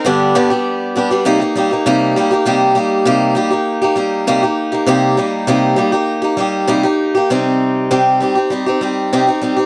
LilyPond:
\new Staff \with { instrumentName = "Steel-string acoustic guitar" } { \time 4/4 \key c \minor \tempo 4 = 99 <g, d g b d' g'>8 <g, d g b d' g'>16 <g b d' g'>8. <g b d' g'>16 <g b d' g'>16 <c g bes ees' g'>16 <bes ees' g'>16 <g bes ees' g'>16 <bes ees' g'>16 <c g bes ees' g'>8 <g bes ees' g'>16 <bes ees' g'>16 | <c g bes ees' g'>8 <g bes ees' g'>8 <c g bes ees' g'>8 <g bes ees' g'>16 <bes ees' g'>8 <bes ees' g'>16 <g bes ees' g'>8 <c g bes ees' g'>16 <bes ees' g'>8 <bes ees' g'>16 | <c g bes ees' g'>8 <g bes ees' g'>8 <c g bes ees' g'>8 <g bes ees' g'>16 <bes ees' g'>8 <bes ees' g'>16 <g bes ees' g'>8 <c g bes ees' g'>16 <bes ees' g'>8 <bes ees' g'>16 | <c g c' ees' g'>4 <c g c' ees' g'>8 <g c' ees' g'>16 <c' ees' g'>16 <g c' ees' g'>16 <c' ees' g'>16 <g c' ees' g'>8 <c g c' ees' g'>16 <c' ees' g'>16 <g c' ees' g'>16 <c' ees' g'>16 | }